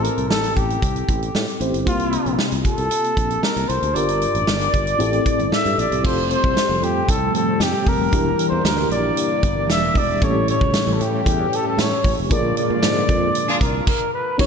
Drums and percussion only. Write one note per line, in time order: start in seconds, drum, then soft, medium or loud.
0.04 closed hi-hat medium
0.18 closed hi-hat soft
0.31 snare loud
0.44 closed hi-hat medium
0.57 kick medium
0.57 closed hi-hat medium
0.70 closed hi-hat soft
0.82 kick medium
0.82 closed hi-hat medium
0.96 closed hi-hat soft
1.09 kick medium
1.09 closed hi-hat medium
1.22 closed hi-hat soft
1.35 snare medium
1.48 closed hi-hat soft
1.61 closed hi-hat medium
1.74 closed hi-hat medium
1.87 kick loud
1.87 closed hi-hat medium
1.99 closed hi-hat medium
2.12 closed hi-hat medium
2.26 closed hi-hat soft
2.39 snare loud
2.52 closed hi-hat medium
2.65 kick medium
2.65 closed hi-hat medium
2.78 closed hi-hat soft
2.91 closed hi-hat medium
3.04 closed hi-hat soft
3.17 kick medium
3.17 closed hi-hat medium
3.30 closed hi-hat soft
3.43 snare medium
3.57 closed hi-hat soft
3.69 closed hi-hat medium
3.83 closed hi-hat medium
3.96 closed hi-hat medium
4.08 closed hi-hat medium
4.22 closed hi-hat medium
4.35 closed hi-hat soft
4.47 snare loud
4.61 closed hi-hat medium
4.74 kick medium
4.74 closed hi-hat medium
4.87 closed hi-hat soft
5.00 closed hi-hat medium
5.13 closed hi-hat soft
5.26 kick medium
5.26 closed hi-hat medium
5.39 closed hi-hat soft
5.52 snare loud
5.66 closed hi-hat soft
5.79 closed hi-hat medium
5.92 closed hi-hat medium
6.05 kick loud
6.05 crash medium
6.31 closed hi-hat medium
6.44 kick medium
6.57 snare loud
6.57 closed hi-hat medium
6.83 closed hi-hat medium
7.09 kick medium
7.09 closed hi-hat medium
7.35 closed hi-hat medium
7.61 snare loud
7.61 closed hi-hat medium
7.87 kick medium
7.87 open hi-hat medium
8.13 kick loud
8.13 closed hi-hat medium
8.39 closed hi-hat medium
8.65 snare loud
8.65 closed hi-hat medium
8.91 closed hi-hat medium
9.17 closed hi-hat loud
9.43 kick loud
9.43 closed hi-hat medium
9.70 snare loud
9.70 closed hi-hat medium
9.95 kick medium
9.95 open hi-hat medium
10.22 kick loud
10.22 closed hi-hat medium
10.48 closed hi-hat medium
10.61 kick loud
10.74 snare loud
10.74 closed hi-hat medium
10.74 tambourine medium
11.01 closed hi-hat medium
11.26 kick loud
11.26 closed hi-hat loud
11.53 closed hi-hat medium
11.79 snare loud
11.79 closed hi-hat medium
11.79 tambourine medium
12.04 kick medium
12.04 open hi-hat medium
12.31 kick loud
12.31 closed hi-hat medium
12.57 closed hi-hat medium
12.83 snare loud
12.83 closed hi-hat medium
12.83 tambourine medium
13.09 kick medium
13.09 closed hi-hat medium
13.35 closed hi-hat medium
13.61 kick loud
13.61 closed hi-hat medium
13.87 kick loud
13.87 crash medium
14.39 kick loud
14.39 crash loud